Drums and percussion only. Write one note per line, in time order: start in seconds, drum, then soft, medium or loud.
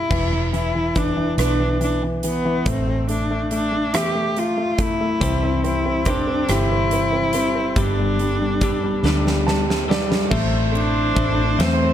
0.11 kick medium
0.11 crash medium
0.54 closed hi-hat soft
0.95 kick medium
0.95 closed hi-hat soft
1.38 cross-stick medium
1.38 closed hi-hat medium
1.81 closed hi-hat soft
2.23 closed hi-hat medium
2.66 kick medium
2.66 closed hi-hat medium
3.09 closed hi-hat soft
3.51 closed hi-hat soft
3.94 cross-stick medium
3.94 closed hi-hat medium
4.36 closed hi-hat soft
4.78 kick medium
4.78 closed hi-hat medium
5.21 kick medium
5.21 closed hi-hat medium
5.64 closed hi-hat soft
6.05 kick medium
6.05 closed hi-hat medium
6.49 cross-stick medium
6.49 closed hi-hat medium
6.91 closed hi-hat soft
7.33 closed hi-hat medium
7.76 kick loud
7.76 closed hi-hat medium
8.19 closed hi-hat soft
8.61 kick medium
8.61 closed hi-hat medium
9.05 snare soft
9.27 snare soft
9.48 snare medium
9.70 snare medium
9.91 snare medium
10.12 snare medium
10.31 kick loud
10.31 crash medium
10.75 ride soft
11.16 kick medium
11.16 ride soft
11.60 snare loud
11.60 ride medium